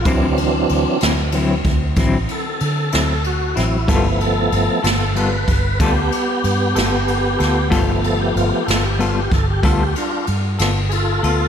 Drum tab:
RD |xxxxxxxxxxxx|xxxxxxxxxxxx|xxxxxxxxxxxx|
SD |---o-----o-o|---o-----o-o|---o-----o--|
BD |o----oo-----|o----oo-----|o----oo-----|